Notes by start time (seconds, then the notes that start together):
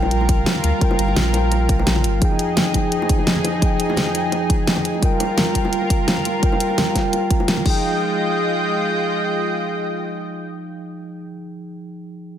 Already playing: A#1 G3 F4 A#4 G5
0.02 high bongo
0.11 closed hi-hat
0.21 high bongo
0.29 kick, closed hi-hat
0.46 snare, closed hi-hat, high bongo
0.56 high conga
0.63 D2, closed hi-hat, high bongo
0.78 G3 F4, kick, closed hi-hat
0.82 A#4 G5
0.91 high bongo
0.99 G1, closed hi-hat
1.08 high bongo
1.16 A#1, snare, closed hi-hat, high conga
1.31 G3 F4, closed hi-hat, high bongo
1.35 A#4 G5
1.52 closed hi-hat, high bongo
1.69 A#1, kick, closed hi-hat
1.79 high bongo
1.87 A#1, snare, closed hi-hat
1.96 high bongo, high conga
2.04 G1, closed hi-hat
2.19 F2 F3 D#4 G#4, kick, closed hi-hat
2.25 G5
2.31 high bongo
2.39 closed hi-hat
2.57 snare, closed hi-hat, high bongo, high conga
2.71 F3 D#4, kick, closed hi-hat, high bongo
2.75 G#4 G5
2.92 closed hi-hat
3.02 high bongo
3.09 kick, closed hi-hat
3.19 high bongo
3.27 snare, closed hi-hat
3.36 high conga
3.44 closed hi-hat, high bongo
3.59 F3 D#4, kick, closed hi-hat, high bongo
3.63 G#4 G5
3.80 closed hi-hat
3.90 high bongo
3.96 snare, closed hi-hat, high conga
4.07 high bongo
4.12 F3 D#4, closed hi-hat
4.16 G#4 G5
4.32 closed hi-hat, high bongo
4.49 kick, closed hi-hat, high bongo
4.67 snare, closed hi-hat
4.76 high bongo, high conga
4.85 closed hi-hat
4.94 high bongo
4.99 G3 F4 A#4, kick, closed hi-hat
5.03 A#4 G5
5.20 closed hi-hat, high bongo
5.37 snare, closed hi-hat, high bongo, high conga
5.52 G3 F4, kick, closed hi-hat
5.56 A#4 G5
5.65 high bongo
5.73 closed hi-hat
5.82 high bongo
5.90 kick, closed hi-hat
6.07 snare, closed hi-hat, high bongo
6.18 high conga
6.25 closed hi-hat, high bongo
6.40 G3 F4, kick, closed hi-hat
6.44 A#4 G5
6.52 high bongo
6.60 closed hi-hat
6.70 high bongo
6.78 snare, closed hi-hat, high conga
6.92 G3 F4, kick, snare, closed hi-hat, high bongo
6.97 A#4 G5
7.13 closed hi-hat, high bongo
7.31 kick, closed hi-hat
7.40 high bongo
7.48 snare, closed hi-hat
7.57 F3, high bongo, high conga
7.64 G#3 D#4 F4 G#4 D#5 G5, kick, crash
7.70 G5